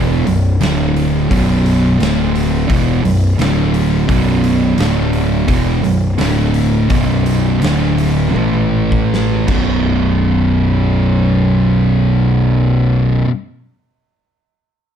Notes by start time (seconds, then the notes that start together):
Already playing: E1 E2 B2 E3
0.25 B0 B1 F#2, open hi-hat
0.60 D1 D2 A2 D3, snare, open hi-hat
0.96 open hi-hat
1.30 B0 B1 F#2 B2, kick, open hi-hat
1.66 open hi-hat
2.00 D1 D2 A2 D3, snare, open hi-hat
2.35 open hi-hat
2.69 E1 E2 B2 E3, kick, open hi-hat
3.03 B0 B1 F#2, open hi-hat
3.38 D1 D2 A2 D3, snare, open hi-hat
3.74 open hi-hat
4.07 B0 B1 F#2 B2, kick, open hi-hat
4.44 open hi-hat
4.78 D1 D2 A2 D3, snare, open hi-hat
5.13 open hi-hat
5.47 E1 E2 B2 E3, kick, open hi-hat
5.82 B0 B1 F#2, open hi-hat
6.18 D1 D2 A2 D3, snare, open hi-hat
6.54 open hi-hat
6.89 B0 B1 F#2 B2, kick, open hi-hat
7.26 open hi-hat
7.62 D1 D2 A2 D3, snare, open hi-hat
7.98 open hi-hat
8.34 A1 A2 E3 A3, high tom
8.54 high tom
8.92 kick
9.14 snare
9.47 B0 B1 F#2 B2, kick, crash